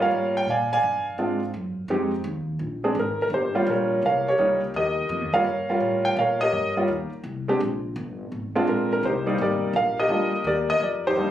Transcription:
0.00 0.10 G2 medium
0.00 0.44 G3 medium
0.00 0.44 A#3 medium
0.00 0.44 C#4 medium
0.00 0.44 F4 medium
0.00 0.45 A#4 medium
0.00 0.45 C#5 medium
0.00 0.34 F5 medium
0.11 0.46 G#2 medium
0.37 0.48 G5 loud
0.46 0.81 A#2 medium
0.46 0.72 F5 medium
0.46 0.71 G#5 medium
0.50 0.72 D5 medium
0.73 1.39 D5 medium
0.73 1.39 F5 medium
0.73 1.04 G#5 loud
0.83 1.17 G2 medium
1.18 1.52 G#2 medium
1.18 1.39 G#3 medium
1.18 1.39 C4 medium
1.18 1.39 D4 medium
1.18 1.39 F4 medium
1.54 1.88 F#2 medium
1.88 2.23 F2 medium
1.88 2.10 G#3 medium
1.88 2.10 C4 medium
1.88 2.10 D#4 medium
1.88 2.11 G4 medium
2.24 2.59 D#2 loud
2.59 2.94 A#1 medium
2.84 2.95 G#3 medium
2.84 2.95 C4 medium
2.84 2.95 D4 medium
2.84 2.95 G#4 medium
2.95 3.29 G#1 medium
2.99 3.21 A#4 medium
3.22 3.27 A#4 medium
3.30 3.52 G1 medium
3.30 3.68 G4 medium
3.34 3.70 C5 medium
3.55 4.01 G3 medium
3.55 4.01 A#3 medium
3.55 4.01 C#4 medium
3.55 4.01 F4 medium
3.55 muted upright bass stroke soft
3.67 4.02 A#1 medium
3.67 4.28 G4 soft
3.67 4.05 A#4 medium
3.67 4.02 C#5 medium
4.02 4.37 C2 medium
4.02 4.28 A#4 medium
4.02 4.26 F5 medium
4.07 4.27 C#5 medium
4.28 4.76 G4 medium
4.28 4.76 A#4 medium
4.28 4.61 C#5 medium
4.38 4.73 C#2 medium
4.38 4.60 G3 medium
4.38 4.60 A#3 medium
4.38 4.60 C#4 medium
4.38 4.60 D#4 medium
4.74 5.09 D#2 medium
4.74 5.43 G4 medium
4.74 5.34 A#4 medium
4.74 5.36 D#5 medium
5.09 5.21 F2 medium
5.21 5.32 D#2 medium
5.33 5.44 C#2 medium
5.33 5.45 G3 medium
5.33 5.45 A#3 medium
5.33 5.45 C#4 medium
5.33 5.45 F4 medium
5.33 5.68 A#4 medium
5.33 6.02 C#5 medium
5.33 6.07 F5 loud
5.44 5.80 G2 medium
5.69 6.15 G3 medium
5.69 6.15 C#4 medium
5.69 6.15 F4 medium
5.69 6.15 A#4 medium
5.80 6.16 A2 medium
6.05 6.10 G5 loud
6.17 6.52 A#2 medium
6.17 6.86 C#5 medium
6.17 6.42 F5 medium
6.21 6.41 A#4 medium
6.41 7.09 G4 medium
6.41 7.09 A#4 medium
6.41 6.74 D#5 loud
6.52 6.87 G2 medium
6.76 6.88 G3 medium
6.76 6.88 A#3 medium
6.76 6.88 C#4 medium
6.76 6.88 F4 medium
6.88 7.10 D#2 medium
7.12 muted upright bass stroke soft
7.24 7.59 C2 medium
7.48 7.59 G#3 medium
7.48 7.60 C4 medium
7.48 7.60 D4 medium
7.48 7.60 G4 medium
7.60 7.95 A#1 medium
7.96 8.30 G1 loud
8.32 8.66 G#1 medium
8.55 9.01 G#3 medium
8.55 9.01 C4 medium
8.55 9.01 D4 medium
8.55 9.01 F4 medium
8.67 9.02 A#1 medium
8.67 8.91 A#4 medium
8.93 9.03 A#4 medium
9.03 9.38 C2 medium
9.03 9.25 D#4 medium
9.03 9.41 G4 medium
9.03 9.41 C5 medium
9.26 9.72 G3 medium
9.26 9.72 A#3 medium
9.26 9.72 D#4 medium
9.26 9.40 D5 medium
9.38 9.73 G#1 medium
9.38 9.98 G4 medium
9.38 9.75 A#4 medium
9.38 9.73 D5 medium
9.73 10.08 A#1 medium
9.73 9.98 A#4 medium
9.73 9.97 F5 medium
10.00 10.46 G4 medium
10.00 10.46 A#4 medium
10.00 10.48 D#5 loud
10.09 10.44 D2 medium
10.09 10.31 G3 medium
10.09 10.30 A#3 medium
10.09 10.31 D4 medium
10.09 10.31 F4 medium
10.44 10.79 D#2 medium
10.44 11.06 G4 medium
10.44 11.14 A#4 medium
10.44 10.68 D5 medium
10.70 10.81 D#5 loud
10.80 11.15 F2 medium
10.80 11.04 D5 medium
11.07 11.17 D#4 medium
11.07 11.31 G4 medium
11.07 11.31 C5 medium
11.16 11.31 D#2 medium
11.16 11.31 G3 medium
11.16 11.31 A#3 medium
11.16 11.31 D4 soft
11.16 11.31 D#4 medium

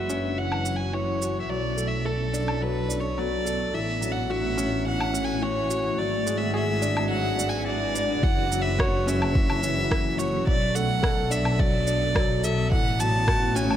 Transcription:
0.00 1.47 F#1 medium
0.00 1.49 F#3 medium
0.00 1.50 F#3 medium
0.00 1.50 C#4 medium
0.00 2.40 E4 medium
0.00 0.11 F#4 medium
0.00 1.22 F#4 medium
0.00 0.15 B4 medium
0.00 0.40 E5 medium
0.09 0.26 C#4 medium
0.09 4.64 A4 medium
0.09 shaker medium
0.38 0.64 E3 medium
0.38 0.78 F#5 loud
0.52 low woodblock medium
0.65 0.92 C#4 medium
0.65 shaker medium
0.76 0.95 G#5 medium
0.94 1.10 E3 medium
0.94 1.40 C#5 medium
1.22 1.49 F#4 medium
1.22 shaker medium
1.41 1.51 E5 medium
1.49 3.71 B1 medium
1.49 3.74 B2 medium
1.49 1.66 F#3 medium
1.49 1.89 D5 medium
1.55 4.64 B3 medium
1.77 2.04 A3 medium
1.77 shaker medium
1.88 2.07 E5 medium
2.05 2.32 A4 medium
2.05 2.64 A4 medium
2.33 2.50 D4 medium
2.33 shaker medium
2.48 low woodblock medium
2.61 2.88 F#3 medium
2.61 3.02 B4 medium
2.89 3.16 D4 medium
2.89 shaker medium
3.00 3.21 C#5 medium
3.18 3.34 F#3 loud
3.18 3.76 D5 loud
3.45 3.72 A4 medium
3.45 shaker medium
3.73 5.95 A1 medium
3.73 3.90 E3 medium
3.73 5.99 A3 medium
3.73 4.13 E5 loud
4.01 4.28 F#3 medium
4.01 6.88 E4 medium
4.01 shaker medium
4.12 9.12 F#4 medium
4.12 4.32 F#5 medium
4.30 4.57 F#4 loud
4.30 4.87 E5 medium
4.37 6.87 E5 medium
4.58 4.74 C#4 loud
4.58 shaker medium
4.86 5.13 E3 medium
4.86 5.26 F#5 loud
5.01 low woodblock medium
5.13 5.41 C#4 medium
5.13 shaker medium
5.25 5.44 G#5 medium
5.42 5.58 E3 loud
5.42 6.00 C#5 loud
5.70 5.97 F#4 medium
5.70 shaker medium
5.98 8.20 G#1 medium
5.98 6.14 F#3 medium
5.98 8.23 G#3 medium
5.98 6.39 D5 loud
6.17 9.12 B4 medium
6.26 6.53 G#3 medium
6.26 8.23 D4 medium
6.26 shaker medium
6.37 6.55 E5 medium
6.54 6.81 G#4 loud
6.54 7.08 E5 medium
6.82 6.98 D4 loud
6.82 shaker medium
6.97 low woodblock medium
7.10 7.37 F#3 medium
7.10 7.51 F#5 loud
7.38 7.65 D4 medium
7.38 shaker medium
7.49 7.67 G#5 medium
7.66 7.93 D4 medium
7.66 8.25 D5 loud
7.95 8.21 D4 loud
7.95 shaker medium
8.23 10.45 F#1 medium
8.23 8.39 E3 medium
8.23 10.47 F#3 medium
8.23 8.64 F#5 loud
8.23 kick loud
8.42 10.47 C#4 loud
8.51 8.78 F#3 medium
8.51 shaker medium
8.62 8.82 E5 loud
8.79 9.05 F#4 loud
8.79 13.62 A4 medium
8.79 9.10 C#5 loud
8.79 kick loud
8.79 cross-stick loud
9.07 9.23 C#4 loud
9.07 10.20 E5 medium
9.07 shaker medium
9.20 11.38 E5 medium
9.20 low woodblock medium
9.35 9.62 E3 medium
9.35 kick loud
9.50 low woodblock medium
9.63 9.90 C#4 medium
9.63 shaker medium
9.91 10.07 E3 loud
9.91 kick loud
9.91 cross-stick loud
10.19 10.46 F#4 medium
10.19 10.47 C#5 medium
10.19 shaker medium
10.47 12.69 B1 medium
10.47 12.72 B2 loud
10.47 10.63 F#3 medium
10.47 10.77 D5 loud
10.47 kick loud
10.61 13.63 B3 medium
10.75 11.02 A3 medium
10.75 11.33 F#5 loud
10.75 shaker medium
11.03 11.30 A4 loud
11.03 kick loud
11.03 cross-stick loud
11.30 11.47 D4 loud
11.30 11.62 E5 medium
11.30 shaker medium
11.45 low woodblock medium
11.58 11.86 F#3 medium
11.58 12.46 D5 loud
11.58 kick loud
11.87 12.14 D4 medium
11.87 shaker medium
12.15 12.31 F#3 loud
12.15 kick loud
12.15 cross-stick loud
12.44 12.70 A4 medium
12.44 12.71 E5 loud
12.44 shaker medium
12.71 13.77 A1 loud
12.71 12.88 E3 medium
12.71 13.77 A3 medium
12.71 13.01 F#5 loud
12.71 kick loud
12.91 13.77 E4 medium
13.00 13.26 F#3 medium
13.00 13.57 A5 loud
13.00 shaker medium
13.28 13.54 F#4 loud
13.28 kick loud
13.28 cross-stick loud
13.56 13.72 C#4 loud
13.56 13.77 G#5 loud
13.56 shaker medium
13.71 low woodblock medium

